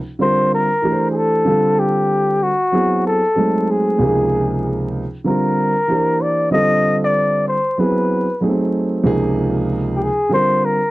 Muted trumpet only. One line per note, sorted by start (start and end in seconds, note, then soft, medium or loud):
0.22 0.50 C5 loud
0.54 1.07 A#4 loud
1.11 1.18 G#4 medium
1.17 1.80 A4 medium
1.79 2.44 G4 loud
2.43 3.05 F#4 loud
3.06 3.71 A4 medium
3.70 4.95 G#4 medium
5.28 6.23 A#4 loud
6.21 6.51 D5 medium
6.52 6.99 D#5 loud
7.04 7.44 D5 medium
7.48 7.81 C5 medium
7.80 8.42 B4 medium
9.96 10.04 G4 medium
10.03 10.33 G#4 loud
10.34 10.66 C5 loud
10.65 10.91 A#4 loud